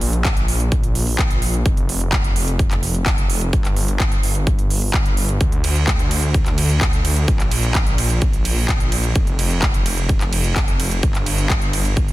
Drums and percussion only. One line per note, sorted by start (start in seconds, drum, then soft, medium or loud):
0.01 open hi-hat loud
0.13 closed hi-hat soft
0.25 kick loud
0.25 clap loud
0.25 closed hi-hat medium
0.37 closed hi-hat soft
0.48 open hi-hat loud
0.60 closed hi-hat soft
0.72 kick loud
0.72 closed hi-hat medium
0.83 closed hi-hat soft
0.95 open hi-hat loud
1.07 open hi-hat medium
1.19 kick loud
1.19 clap loud
1.31 closed hi-hat soft
1.42 open hi-hat loud
1.54 closed hi-hat soft
1.66 kick loud
1.66 closed hi-hat medium
1.77 closed hi-hat soft
1.89 open hi-hat loud
2.01 closed hi-hat soft
2.12 kick loud
2.12 clap loud
2.12 closed hi-hat medium
2.24 closed hi-hat soft
2.36 open hi-hat loud
2.48 closed hi-hat soft
2.59 kick loud
2.59 closed hi-hat medium
2.71 clap soft
2.71 closed hi-hat soft
2.83 open hi-hat loud
2.95 closed hi-hat soft
3.06 kick loud
3.06 clap loud
3.06 closed hi-hat medium
3.18 closed hi-hat soft
3.30 open hi-hat loud
3.41 closed hi-hat soft
3.53 kick loud
3.53 closed hi-hat medium
3.65 clap soft
3.65 closed hi-hat soft
3.76 open hi-hat loud
3.88 closed hi-hat soft
4.00 kick loud
4.00 clap loud
4.00 closed hi-hat medium
4.12 closed hi-hat soft
4.23 open hi-hat loud
4.35 closed hi-hat soft
4.47 kick loud
4.47 closed hi-hat medium
4.59 closed hi-hat soft
4.70 open hi-hat loud
4.82 open hi-hat medium
4.94 kick loud
4.94 clap loud
4.94 closed hi-hat medium
5.06 closed hi-hat soft
5.17 open hi-hat loud
5.29 closed hi-hat soft
5.41 kick loud
5.41 closed hi-hat medium
5.52 closed hi-hat soft
5.64 open hi-hat loud
5.64 ride medium
5.76 closed hi-hat soft
5.87 kick loud
5.87 clap loud
5.87 closed hi-hat medium
5.99 closed hi-hat soft
6.11 open hi-hat loud
6.11 ride medium
6.23 closed hi-hat soft
6.34 kick loud
6.34 closed hi-hat medium
6.46 clap soft
6.46 closed hi-hat soft
6.58 open hi-hat loud
6.58 ride medium
6.70 closed hi-hat soft
6.81 kick loud
6.81 clap loud
6.81 closed hi-hat medium
6.93 closed hi-hat soft
7.05 open hi-hat loud
7.05 ride medium
7.16 closed hi-hat soft
7.28 kick loud
7.28 closed hi-hat medium
7.40 clap soft
7.40 closed hi-hat soft
7.51 open hi-hat loud
7.51 ride medium
7.63 closed hi-hat soft
7.75 kick loud
7.75 clap loud
7.75 closed hi-hat medium
7.87 closed hi-hat soft
7.98 open hi-hat loud
7.98 ride medium
8.10 closed hi-hat soft
8.22 kick loud
8.22 closed hi-hat medium
8.33 closed hi-hat soft
8.45 open hi-hat loud
8.45 ride medium
8.57 open hi-hat medium
8.69 kick loud
8.69 clap loud
8.69 closed hi-hat medium
8.80 closed hi-hat soft
8.92 open hi-hat loud
8.92 ride medium
9.04 closed hi-hat soft
9.15 kick loud
9.15 closed hi-hat medium
9.27 closed hi-hat soft
9.39 open hi-hat loud
9.39 ride medium
9.51 closed hi-hat soft
9.62 kick loud
9.62 clap loud
9.62 closed hi-hat medium
9.74 closed hi-hat soft
9.86 open hi-hat loud
9.86 ride medium
9.98 closed hi-hat soft
10.09 kick loud
10.09 closed hi-hat medium
10.21 clap soft
10.21 closed hi-hat soft
10.33 open hi-hat loud
10.33 ride medium
10.44 closed hi-hat soft
10.56 kick loud
10.56 clap loud
10.56 closed hi-hat medium
10.68 closed hi-hat soft
10.80 open hi-hat loud
10.80 ride medium
10.91 closed hi-hat soft
11.03 kick loud
11.03 closed hi-hat medium
11.15 clap soft
11.15 closed hi-hat soft
11.26 open hi-hat loud
11.26 ride medium
11.38 closed hi-hat soft
11.50 kick loud
11.50 clap loud
11.50 closed hi-hat medium
11.62 closed hi-hat soft
11.73 open hi-hat loud
11.73 ride medium
11.85 closed hi-hat soft
11.97 kick loud
11.97 closed hi-hat medium
12.08 closed hi-hat soft